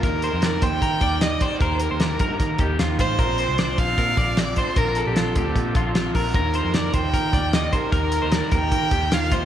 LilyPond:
<<
  \new Staff \with { instrumentName = "Violin" } { \time 4/4 \key ees \lydian \tempo 4 = 152 bes'4. g''4. ees''8 d''8 | c''8 bes'2 r4 c''8~ | c''4. f''4. d''8 c''8 | bes'8 a'2 r4 bes'8~ |
bes'4. g''4. ees''8 bes'8~ | bes'4. g''4. f''8 c''8 | }
  \new Staff \with { instrumentName = "Clean electric guitar" } { \time 4/4 \key ees \lydian bes'8 c''8 d''8 c''8 bes'8 d''4 c''8 | bes'8. c''16 d''8 bes'4 g'8 f'8 f'8 | bes'8 c''8 d''8 c''8 bes'8 d''4 c''8 | bes'8. g'16 f'8 g'4 f'8 f'8 bes'8 |
bes'8 c''8 d''8 c''8 bes'8 d''4 c''8 | bes'8. c''16 d''8 bes'4 g'8 f'8 f'8 | }
  \new Staff \with { instrumentName = "Overdriven electric guitar" } { \time 4/4 \key ees \lydian <ees g bes ees'>8. <g bes ees'>4 <g bes ees'>8. <ees g bes ees'>8 <ees g bes ees'>8 <ees g bes ees'>8 | <ees g bes ees'>8. <g bes ees'>4 <g bes ees'>8. <ees g bes ees'>8 <ees g bes ees'>8 <ees g bes ees'>8 | <bes, d f c' d'>8. <f c' d'>4 <f c' d'>8. <d f c' d'>8 <d f c' d'>8 <d f c' d'>8 | <bes, d f c' d'>8. <f c' d'>4 <f c' d'>8. <d f c' d'>8 <d f c' d'>8 <d f c' d'>8 |
<ees g bes ees'>8. <g bes ees'>4 <g bes ees'>8. <ees g bes ees'>8 <ees g bes ees'>8 <ees g bes ees'>8 | <ees g bes ees'>8. <g bes ees'>4 <g bes ees'>8. <ees g bes ees'>8 <ees g bes ees'>8 <ees g bes ees'>8 | }
  \new Staff \with { instrumentName = "Picked electric bass" } { \clef bass \time 4/4 \key ees \lydian ees,8. f,8. ees,8 ees8 ees,4 r8 | ees,8. ees,8. g,8 ees8 ees,8 ees,8 a,,8 | bes,,8. c,8. bes,,8 bes,8 bes,,4 r8 | bes,,8. bes,,8. d,8 bes,8 bes,,4 bes,,8 |
ees,8. f,8. ees,8 ees8 ees,4 r8 | ees,8. ees,8 r16 ees,8 ees8 ees,8 ees,8 ees,8 | }
  \new DrumStaff \with { instrumentName = "Drums" } \drummode { \time 4/4 <hh bd>8 hh8 <hh sn>8 <hh bd>8 <hh bd>8 <hh bd>8 <hh sn>8 <hh bd>8 | <hh bd>8 hh8 <hh sn>8 <hh bd>8 <hh bd>8 <hh bd>8 <hh sn>8 <hh bd>8 | <hh bd>8 hh8 <hh sn>8 <hh bd>8 <hh bd>8 <hh bd>8 <hh sn>8 <hh bd>8 | <hh bd>8 hh8 <hh sn>8 <hh bd>8 <hh bd>8 <hh bd>8 <hh sn>8 <hho bd>8 |
<hh bd>8 hh8 <hh sn>8 <hh bd>8 <hh bd>8 <hh bd>8 <hh sn>8 <hh bd>8 | <hh bd>8 hh8 <hh sn>8 <hh bd>8 <hh bd>8 <hh bd>8 <hh sn>8 <hh bd>8 | }
>>